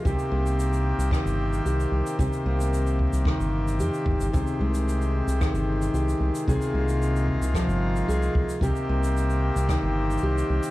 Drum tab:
SH |x-x---x-x-x---x-x-x---x-x-x---x-|x-x---x-x-x---x---x---x-x-x---x-|x-x---x-x-x---x-x-x---x-x-x---x-|x-x---x-x-x---x-x-x---x-x-x---x-|
SD |----------------r---------------|----------------r---------------|----------------r---------------|----------------r---------------|
BD |o---------------o---------------|o-----------o---o-----------o---|o---------------o---------------|o-----------o---o-----------o---|

SH |x-x---x-x-x---x-x-----xx--x---x-|
SD |----------------r---------------|
BD |o---------------o---------------|